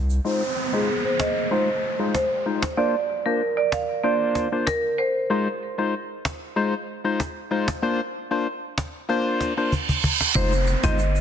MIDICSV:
0, 0, Header, 1, 8, 480
1, 0, Start_track
1, 0, Tempo, 631579
1, 189, Time_signature, 4, 2, 24, 8
1, 8517, End_track
2, 0, Start_track
2, 0, Title_t, "Marimba"
2, 0, Program_c, 0, 12
2, 189, Note_on_c, 0, 72, 89
2, 346, Note_off_c, 0, 72, 0
2, 556, Note_on_c, 0, 68, 76
2, 630, Note_off_c, 0, 68, 0
2, 797, Note_on_c, 0, 72, 72
2, 871, Note_off_c, 0, 72, 0
2, 909, Note_on_c, 0, 75, 78
2, 992, Note_off_c, 0, 75, 0
2, 1148, Note_on_c, 0, 72, 92
2, 1494, Note_off_c, 0, 72, 0
2, 1629, Note_on_c, 0, 72, 78
2, 1974, Note_off_c, 0, 72, 0
2, 2108, Note_on_c, 0, 74, 95
2, 2265, Note_off_c, 0, 74, 0
2, 2475, Note_on_c, 0, 70, 78
2, 2549, Note_off_c, 0, 70, 0
2, 2714, Note_on_c, 0, 74, 81
2, 2788, Note_off_c, 0, 74, 0
2, 2827, Note_on_c, 0, 77, 82
2, 2911, Note_off_c, 0, 77, 0
2, 3066, Note_on_c, 0, 74, 84
2, 3413, Note_off_c, 0, 74, 0
2, 3547, Note_on_c, 0, 70, 77
2, 3631, Note_off_c, 0, 70, 0
2, 3787, Note_on_c, 0, 72, 74
2, 3871, Note_off_c, 0, 72, 0
2, 7869, Note_on_c, 0, 72, 108
2, 7952, Note_off_c, 0, 72, 0
2, 8236, Note_on_c, 0, 75, 80
2, 8310, Note_off_c, 0, 75, 0
2, 8517, End_track
3, 0, Start_track
3, 0, Title_t, "Synth stab"
3, 0, Program_c, 1, 62
3, 187, Note_on_c, 1, 56, 95
3, 189, Note_on_c, 1, 63, 87
3, 190, Note_on_c, 1, 65, 88
3, 192, Note_on_c, 1, 72, 103
3, 324, Note_off_c, 1, 56, 0
3, 325, Note_off_c, 1, 63, 0
3, 325, Note_off_c, 1, 65, 0
3, 326, Note_off_c, 1, 72, 0
3, 555, Note_on_c, 1, 56, 74
3, 556, Note_on_c, 1, 63, 66
3, 558, Note_on_c, 1, 65, 70
3, 559, Note_on_c, 1, 72, 82
3, 678, Note_off_c, 1, 56, 0
3, 678, Note_off_c, 1, 63, 0
3, 679, Note_off_c, 1, 65, 0
3, 680, Note_off_c, 1, 72, 0
3, 1147, Note_on_c, 1, 56, 91
3, 1148, Note_on_c, 1, 63, 82
3, 1151, Note_on_c, 1, 65, 80
3, 1152, Note_on_c, 1, 72, 97
3, 1284, Note_off_c, 1, 56, 0
3, 1284, Note_off_c, 1, 63, 0
3, 1285, Note_off_c, 1, 65, 0
3, 1286, Note_off_c, 1, 72, 0
3, 1514, Note_on_c, 1, 56, 76
3, 1516, Note_on_c, 1, 63, 68
3, 1517, Note_on_c, 1, 65, 66
3, 1518, Note_on_c, 1, 72, 80
3, 1637, Note_off_c, 1, 56, 0
3, 1638, Note_off_c, 1, 63, 0
3, 1639, Note_off_c, 1, 65, 0
3, 1639, Note_off_c, 1, 72, 0
3, 1868, Note_on_c, 1, 56, 76
3, 1869, Note_on_c, 1, 63, 72
3, 1870, Note_on_c, 1, 65, 70
3, 1872, Note_on_c, 1, 72, 82
3, 2004, Note_off_c, 1, 56, 0
3, 2004, Note_off_c, 1, 63, 0
3, 2005, Note_off_c, 1, 65, 0
3, 2006, Note_off_c, 1, 72, 0
3, 2107, Note_on_c, 1, 58, 99
3, 2109, Note_on_c, 1, 62, 87
3, 2110, Note_on_c, 1, 65, 87
3, 2111, Note_on_c, 1, 72, 103
3, 2243, Note_off_c, 1, 58, 0
3, 2244, Note_off_c, 1, 62, 0
3, 2245, Note_off_c, 1, 65, 0
3, 2246, Note_off_c, 1, 72, 0
3, 2476, Note_on_c, 1, 58, 71
3, 2477, Note_on_c, 1, 62, 66
3, 2478, Note_on_c, 1, 65, 68
3, 2480, Note_on_c, 1, 72, 81
3, 2598, Note_off_c, 1, 58, 0
3, 2599, Note_off_c, 1, 62, 0
3, 2599, Note_off_c, 1, 65, 0
3, 2600, Note_off_c, 1, 72, 0
3, 3067, Note_on_c, 1, 58, 91
3, 3068, Note_on_c, 1, 62, 85
3, 3070, Note_on_c, 1, 65, 81
3, 3071, Note_on_c, 1, 72, 97
3, 3405, Note_off_c, 1, 58, 0
3, 3405, Note_off_c, 1, 62, 0
3, 3406, Note_off_c, 1, 65, 0
3, 3407, Note_off_c, 1, 72, 0
3, 3436, Note_on_c, 1, 58, 72
3, 3438, Note_on_c, 1, 62, 69
3, 3439, Note_on_c, 1, 65, 69
3, 3441, Note_on_c, 1, 72, 78
3, 3558, Note_off_c, 1, 58, 0
3, 3559, Note_off_c, 1, 62, 0
3, 3559, Note_off_c, 1, 65, 0
3, 3561, Note_off_c, 1, 72, 0
3, 4027, Note_on_c, 1, 56, 98
3, 4029, Note_on_c, 1, 63, 87
3, 4031, Note_on_c, 1, 65, 88
3, 4032, Note_on_c, 1, 72, 103
3, 4164, Note_off_c, 1, 56, 0
3, 4165, Note_off_c, 1, 63, 0
3, 4165, Note_off_c, 1, 65, 0
3, 4166, Note_off_c, 1, 72, 0
3, 4393, Note_on_c, 1, 56, 71
3, 4395, Note_on_c, 1, 63, 68
3, 4396, Note_on_c, 1, 65, 66
3, 4398, Note_on_c, 1, 72, 80
3, 4517, Note_off_c, 1, 56, 0
3, 4518, Note_off_c, 1, 63, 0
3, 4518, Note_off_c, 1, 65, 0
3, 4519, Note_off_c, 1, 72, 0
3, 4986, Note_on_c, 1, 56, 90
3, 4987, Note_on_c, 1, 63, 80
3, 4989, Note_on_c, 1, 65, 80
3, 4991, Note_on_c, 1, 72, 98
3, 5123, Note_off_c, 1, 56, 0
3, 5124, Note_off_c, 1, 63, 0
3, 5124, Note_off_c, 1, 65, 0
3, 5125, Note_off_c, 1, 72, 0
3, 5353, Note_on_c, 1, 56, 76
3, 5355, Note_on_c, 1, 63, 67
3, 5356, Note_on_c, 1, 65, 70
3, 5358, Note_on_c, 1, 72, 82
3, 5477, Note_off_c, 1, 56, 0
3, 5478, Note_off_c, 1, 63, 0
3, 5478, Note_off_c, 1, 65, 0
3, 5479, Note_off_c, 1, 72, 0
3, 5706, Note_on_c, 1, 56, 74
3, 5708, Note_on_c, 1, 63, 71
3, 5709, Note_on_c, 1, 65, 70
3, 5712, Note_on_c, 1, 72, 82
3, 5843, Note_off_c, 1, 56, 0
3, 5844, Note_off_c, 1, 63, 0
3, 5845, Note_off_c, 1, 65, 0
3, 5846, Note_off_c, 1, 72, 0
3, 5946, Note_on_c, 1, 58, 100
3, 5948, Note_on_c, 1, 62, 85
3, 5950, Note_on_c, 1, 65, 88
3, 5952, Note_on_c, 1, 72, 106
3, 6083, Note_off_c, 1, 58, 0
3, 6084, Note_off_c, 1, 62, 0
3, 6085, Note_off_c, 1, 65, 0
3, 6086, Note_off_c, 1, 72, 0
3, 6314, Note_on_c, 1, 58, 74
3, 6316, Note_on_c, 1, 62, 69
3, 6318, Note_on_c, 1, 65, 67
3, 6319, Note_on_c, 1, 72, 77
3, 6438, Note_off_c, 1, 58, 0
3, 6438, Note_off_c, 1, 62, 0
3, 6439, Note_off_c, 1, 65, 0
3, 6440, Note_off_c, 1, 72, 0
3, 6907, Note_on_c, 1, 58, 90
3, 6908, Note_on_c, 1, 62, 79
3, 6909, Note_on_c, 1, 65, 86
3, 6912, Note_on_c, 1, 72, 103
3, 7244, Note_off_c, 1, 58, 0
3, 7245, Note_off_c, 1, 62, 0
3, 7246, Note_off_c, 1, 65, 0
3, 7247, Note_off_c, 1, 72, 0
3, 7275, Note_on_c, 1, 58, 75
3, 7276, Note_on_c, 1, 62, 69
3, 7278, Note_on_c, 1, 65, 69
3, 7280, Note_on_c, 1, 72, 83
3, 7398, Note_off_c, 1, 58, 0
3, 7398, Note_off_c, 1, 62, 0
3, 7399, Note_off_c, 1, 65, 0
3, 7400, Note_off_c, 1, 72, 0
3, 7868, Note_on_c, 1, 56, 101
3, 7869, Note_on_c, 1, 63, 92
3, 7871, Note_on_c, 1, 65, 94
3, 7872, Note_on_c, 1, 72, 110
3, 8004, Note_off_c, 1, 56, 0
3, 8005, Note_off_c, 1, 63, 0
3, 8006, Note_off_c, 1, 65, 0
3, 8006, Note_off_c, 1, 72, 0
3, 8234, Note_on_c, 1, 56, 77
3, 8235, Note_on_c, 1, 63, 70
3, 8237, Note_on_c, 1, 65, 70
3, 8239, Note_on_c, 1, 72, 84
3, 8357, Note_off_c, 1, 56, 0
3, 8358, Note_off_c, 1, 63, 0
3, 8359, Note_off_c, 1, 65, 0
3, 8360, Note_off_c, 1, 72, 0
3, 8517, End_track
4, 0, Start_track
4, 0, Title_t, "808-style bass"
4, 0, Program_c, 2, 38
4, 0, Note_on_c, 2, 36, 103
4, 150, Note_off_c, 2, 36, 0
4, 7869, Note_on_c, 2, 29, 108
4, 8175, Note_off_c, 2, 29, 0
4, 8235, Note_on_c, 2, 31, 99
4, 8517, Note_off_c, 2, 31, 0
4, 8517, End_track
5, 0, Start_track
5, 0, Title_t, "Downlifter"
5, 0, Program_c, 3, 103
5, 189, Note_on_c, 3, 60, 80
5, 4029, Note_off_c, 3, 60, 0
5, 7868, Note_on_c, 3, 60, 86
5, 8517, Note_off_c, 3, 60, 0
5, 8517, End_track
6, 0, Start_track
6, 0, Title_t, "Reverse cymbal"
6, 0, Program_c, 4, 119
6, 6908, Note_on_c, 4, 60, 83
6, 7869, Note_off_c, 4, 60, 0
6, 8517, End_track
7, 0, Start_track
7, 0, Title_t, "Cajon"
7, 909, Note_on_c, 9, 38, 108
7, 985, Note_off_c, 9, 38, 0
7, 1630, Note_on_c, 9, 38, 85
7, 1706, Note_off_c, 9, 38, 0
7, 1995, Note_on_c, 9, 38, 102
7, 2071, Note_off_c, 9, 38, 0
7, 2829, Note_on_c, 9, 38, 106
7, 2905, Note_off_c, 9, 38, 0
7, 3308, Note_on_c, 9, 38, 67
7, 3384, Note_off_c, 9, 38, 0
7, 3550, Note_on_c, 9, 38, 101
7, 3626, Note_off_c, 9, 38, 0
7, 4750, Note_on_c, 9, 38, 104
7, 4826, Note_off_c, 9, 38, 0
7, 5471, Note_on_c, 9, 38, 85
7, 5547, Note_off_c, 9, 38, 0
7, 5836, Note_on_c, 9, 38, 106
7, 5912, Note_off_c, 9, 38, 0
7, 6670, Note_on_c, 9, 38, 104
7, 6746, Note_off_c, 9, 38, 0
7, 7148, Note_on_c, 9, 38, 66
7, 7224, Note_off_c, 9, 38, 0
7, 7388, Note_on_c, 9, 36, 51
7, 7464, Note_off_c, 9, 36, 0
7, 7516, Note_on_c, 9, 36, 58
7, 7592, Note_off_c, 9, 36, 0
7, 7628, Note_on_c, 9, 36, 80
7, 7704, Note_off_c, 9, 36, 0
7, 7756, Note_on_c, 9, 38, 80
7, 7832, Note_off_c, 9, 38, 0
7, 7868, Note_on_c, 9, 36, 126
7, 7944, Note_off_c, 9, 36, 0
7, 8109, Note_on_c, 9, 38, 40
7, 8185, Note_off_c, 9, 38, 0
7, 8235, Note_on_c, 9, 36, 105
7, 8311, Note_off_c, 9, 36, 0
7, 8476, Note_on_c, 9, 38, 32
7, 8517, Note_off_c, 9, 38, 0
7, 8517, End_track
8, 0, Start_track
8, 0, Title_t, "Drums"
8, 76, Note_on_c, 9, 82, 70
8, 152, Note_off_c, 9, 82, 0
8, 7869, Note_on_c, 9, 82, 71
8, 7945, Note_off_c, 9, 82, 0
8, 7997, Note_on_c, 9, 82, 55
8, 8073, Note_off_c, 9, 82, 0
8, 8108, Note_on_c, 9, 82, 56
8, 8184, Note_off_c, 9, 82, 0
8, 8238, Note_on_c, 9, 82, 82
8, 8314, Note_off_c, 9, 82, 0
8, 8350, Note_on_c, 9, 82, 72
8, 8426, Note_off_c, 9, 82, 0
8, 8478, Note_on_c, 9, 82, 50
8, 8517, Note_off_c, 9, 82, 0
8, 8517, End_track
0, 0, End_of_file